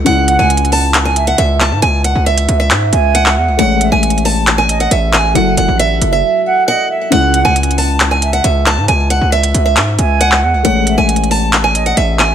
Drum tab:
HH |x-----x-----x-x-x-o-----x-----x--x--x-----------|x-----x-----x--x--x-----x-----x-----x-----------|x-----x-----x-x-x-o-----x-----x--x--x-----------|x-----x-----x-----x-----------------------------|
CP |------------------------x-----------------x-----|------------------------x--------------x--------|------------------------x-----------------x-----|------------------------------------------------|

HH |x-----x-----x-x-x-o-----x-----x--x--x-----------|x-----x-----x--x--x-----x-----x-----x-----------|x-----x-----x-x-x-o-----x-----x--x--x-----------|
CP |------------------------x-----------------x-----|------------------------x--------------x--------|------------------------x-----------------x-----|